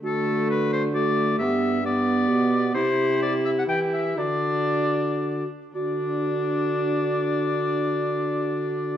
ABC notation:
X:1
M:3/4
L:1/16
Q:1/4=121
K:Dmix
V:1 name="Oboe"
A4 B2 c2 d4 | e4 d8 | c4 d2 e f g2 e2 | d8- d2 z2 |
d12- | d12 |]
V:2 name="Recorder"
F8 F4 | G4 G8 | G8 G4 | F8- F2 z2 |
F12- | F12 |]
V:3 name="Viola"
A,8 A,4 | B,4 B,8 | E8 E4 | D8- D2 z2 |
D12- | D12 |]
V:4 name="Trombone" clef=bass
D,12 | G,,8 B,,4 | C,8 E,4 | D,8- D,2 z2 |
D,12- | D,12 |]